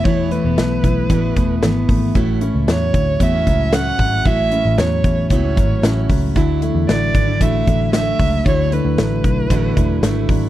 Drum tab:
HH |xxxxxxxo|xxxxxxxo|xxxxxxxo|xxxxxxxo|
SD |--o---o-|--o---o-|--o---o-|--o---o-|
BD |o--ooo-o|o--ooo-o|o--ooo-o|o--ooo-o|

HH |xxxxxxxo|
SD |--o---o-|
BD |o--ooo-o|